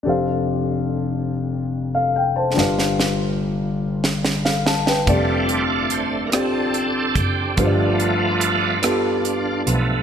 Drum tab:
HH |------------|------------|x-x-x-x-x-x-|x-x-x-x-x-x-|
SD |------------|ooo----ooooo|------r-----|------r-----|
BD |------------|------------|o---------o-|o-----------|